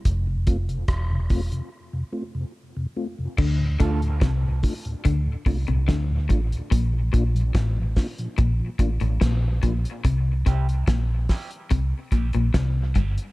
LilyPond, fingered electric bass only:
\new Staff \with { instrumentName = "Fingered electric bass" } { \clef bass \time 4/4 \key d \minor \tempo 4 = 72 f,,4 e,,8. r2 r16 | d,8 d,8 c,8 r8 d,16 r16 c,16 c,16 d,8 a,,16 r16 | bes,,8 bes,,8 a,,8 r8 bes,,16 r16 a,,16 a,,16 bes,,8 bes,,16 r16 | c,8 c,8 bes,,8 r8 c,16 r16 bes,,16 bes,,16 c,8 g,,16 r16 | }